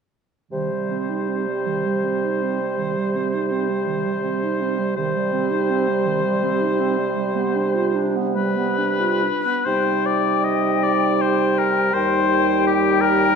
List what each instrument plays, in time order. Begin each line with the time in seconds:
0.51 bassoon C3, clarinet D#3, french horn G3, oboe C5
0.71 clarinet G3
0.91 clarinet C4
1.09 clarinet D#4
1.28 clarinet C4
1.47 clarinet G3
1.67 clarinet D#3
1.85 clarinet G3
2.04 clarinet C4
2.24 clarinet D#4
2.42 clarinet C4
2.61 clarinet G3
2.78 clarinet D#3
2.98 clarinet G3
3.15 clarinet C4
3.33 clarinet D#4
3.51 clarinet C4
3.69 clarinet G3
3.87 clarinet D#3
4.06 clarinet G3
4.24 clarinet C4
4.43 clarinet D#4
4.61 clarinet C4
4.79 clarinet G3
4.97 bassoon C3, clarinet D#3, french horn G3, oboe C5
5.16 clarinet G3
5.33 clarinet C4
5.51 clarinet D#4
5.70 clarinet C4
5.88 clarinet G3
6.06 clarinet D#3
6.25 clarinet G3
6.43 clarinet C4
6.61 clarinet D#4
6.80 clarinet C4
6.98 clarinet G3
7.17 clarinet G3
7.35 clarinet B3
7.55 clarinet D4
7.75 clarinet F4
7.95 clarinet D4
8.16 clarinet B3
8.36 clarinet G3, oboe B4
8.57 clarinet B3
8.78 clarinet D4
9.00 clarinet F4
9.23 clarinet D4
9.46 clarinet B3
9.66 bassoon C3, french horn G3, clarinet D#4, oboe C5, flute G5
10.06 oboe D5
10.44 oboe D#5
10.83 oboe D5
11.21 oboe C5
11.58 oboe A#4
11.94 bassoon D#2, french horn G3, clarinet D#4, oboe C5, flute G5
12.67 oboe G4
13.01 oboe A#4